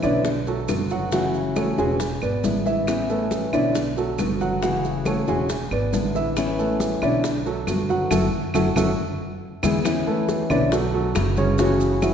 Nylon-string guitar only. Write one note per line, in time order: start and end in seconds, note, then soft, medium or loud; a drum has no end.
0.03 0.24 B3 medium
0.03 0.24 C#4 medium
0.03 0.24 E4 medium
0.24 muted nylon-string guitar stroke medium
0.68 1.11 D3 soft
0.68 1.12 A3 soft
0.68 1.12 B3 soft
0.68 1.12 F#4 medium
1.12 1.77 C#3 medium
1.12 1.77 E3 medium
1.12 1.78 A3 medium
1.12 1.77 C#4 medium
1.12 1.77 F#4 medium
1.78 2.00 E3 soft
1.78 2.00 A3 medium
1.78 1.99 C#4 medium
1.78 1.99 F#4 medium
2.00 muted nylon-string guitar stroke medium
2.44 2.87 D3 soft
2.44 2.87 G#3 soft
2.44 2.87 B3 soft
2.44 2.88 E4 medium
2.87 3.52 E3 medium
2.87 3.53 B3 medium
2.87 3.53 C#4 medium
2.87 3.52 E4 medium
3.53 3.74 B3 soft
3.53 3.75 C#4 medium
3.53 3.74 E4 medium
3.75 muted nylon-string guitar stroke medium
4.18 4.61 D3 soft
4.18 4.62 A3 soft
4.18 4.62 B3 medium
4.18 4.62 F#4 medium
4.62 5.27 C#3 medium
4.62 5.27 E3 medium
4.62 5.27 A3 medium
4.62 5.27 C#4 medium
4.62 5.26 F#4 medium
5.28 5.49 E3 medium
5.28 5.49 A3 medium
5.28 5.49 C#4 medium
5.28 5.49 F#4 medium
5.50 muted nylon-string guitar stroke medium
5.94 6.36 D3 soft
5.94 6.36 G#3 soft
5.94 6.36 B3 medium
5.94 6.37 E4 soft
6.37 7.01 E3 medium
6.37 7.02 B3 medium
6.37 7.02 C#4 medium
6.37 7.01 E4 medium
7.02 7.24 B3 soft
7.02 7.24 C#4 medium
7.02 7.23 E4 medium
7.24 muted nylon-string guitar stroke medium
7.68 8.10 D3 soft
7.68 8.10 A3 soft
7.68 8.11 B3 medium
7.68 8.11 F#4 medium
8.11 8.25 F#3 medium
8.11 8.25 A3 medium
8.11 8.25 C#4 medium
8.55 8.69 F#3 medium
8.55 8.69 A3 medium
8.55 8.69 C#4 medium
8.76 8.90 F#3 medium
8.76 8.90 A3 medium
8.76 8.90 C#4 medium
9.63 9.77 E3 medium
9.63 9.77 G#3 medium
9.63 9.77 B3 medium
9.85 10.49 E3 medium
9.85 10.49 B3 medium
9.85 10.49 C#4 medium
9.85 10.48 E4 medium
10.50 10.71 B3 medium
10.50 10.71 C#4 medium
10.50 10.71 E4 medium
10.72 muted nylon-string guitar stroke medium
11.15 11.58 D3 soft
11.15 11.58 A3 soft
11.15 11.58 B3 medium
11.15 11.59 F#4 medium
11.59 12.14 C#3 medium
11.59 12.14 E3 medium
11.59 12.14 A3 medium
11.59 12.14 C#4 medium
11.59 12.14 F#4 medium